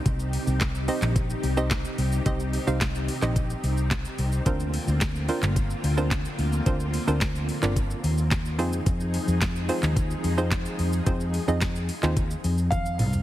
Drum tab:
HH |x-o-x-o-x-o-x-o-|x-o-x-o-x-o-x-o-|x-o-x-o-x-o-x-o-|x-o-x-o-x-o-x-o-|
SH |xxxxxxxxxxxxxxxx|xxxxxxxxxxxxxxxx|xxxxxxxxxxxxxxxx|xxxxxxxxxxxxxxxx|
CP |----x--x----x---|----x--x----x---|----x--x----x---|----x--x----x---|
SD |----o-------o---|----o-------o---|----o-------o---|----o-------o---|
T1 |----------------|----------------|----------------|----------------|
T2 |----------------|----------------|----------------|----------------|
FT |----------------|----------------|----------------|----------------|
BD |o---o---o---o---|o---o---o---o---|o---o---o---o---|o---o---o---o---|

HH |x-o-x-o-x-o-x-o-|x-o-x-o-x-o-x-o-|
SH |xxxxxxxxxxxxxxxx|xxxxxxxxxxxxxxxx|
CP |----x--x----x---|----x--x--------|
SD |----o-------o---|----o-----------|
T1 |----------------|------------o---|
T2 |----------------|--------------o-|
FT |----------------|---------------o|
BD |o---o---o---o---|o---o---o---o---|